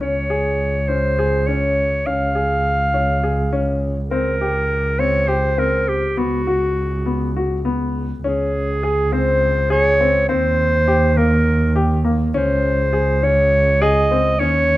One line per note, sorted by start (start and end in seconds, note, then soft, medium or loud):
0.00 2.06 C#2 medium
0.00 0.22 C#4 medium
0.00 0.90 C#5 medium
0.30 0.73 G#4 medium
0.88 1.10 C#4 medium
0.88 1.48 C5 medium
1.19 1.40 G#4 medium
1.47 1.91 C#4 medium
1.47 2.08 C#5 medium
2.06 4.11 C#2 medium
2.06 2.28 C#4 medium
2.06 3.82 F5 medium
2.35 2.79 G#4 medium
2.94 3.16 C#4 medium
3.23 3.45 G#4 medium
3.53 3.96 C#4 medium
4.10 6.16 C#2 medium
4.10 4.33 C4 medium
4.10 5.01 A#4 medium
4.41 4.84 G4 medium
4.99 5.21 C4 medium
4.99 5.29 C#5 medium
5.28 5.50 G4 medium
5.28 5.60 C5 medium
5.58 6.01 C4 medium
5.58 5.90 A#4 medium
5.88 6.20 G4 medium
6.16 8.18 C#2 medium
6.16 6.39 B3 medium
6.16 7.65 F#4 medium
6.47 6.90 F#4 medium
7.06 7.27 B3 medium
7.36 7.57 F#4 medium
7.65 8.08 B3 medium
8.24 10.31 C#2 medium
8.24 8.67 C#4 medium
8.24 9.14 G#4 medium
8.83 9.04 G#4 medium
9.12 9.55 C4 medium
9.12 9.71 C5 medium
9.70 9.92 G#4 medium
9.70 10.25 C#5 medium
10.01 10.22 C4 medium
10.29 12.36 D#2 medium
10.29 10.72 C4 medium
10.29 11.19 C5 medium
10.88 11.09 G4 medium
11.17 11.60 A#3 medium
11.17 11.76 A#4 medium
11.76 11.97 G4 medium
12.05 12.26 A#3 medium
12.34 14.42 C#2 medium
12.34 12.78 C#4 medium
12.34 13.26 C5 medium
12.93 13.15 G#4 medium
13.23 13.66 C#4 medium
13.23 13.83 C#5 medium
13.82 14.03 G#4 medium
13.82 14.41 D#5 medium
14.11 14.33 C4 medium
14.39 14.77 D#2 medium
14.39 14.77 C#4 medium
14.39 14.77 C#5 medium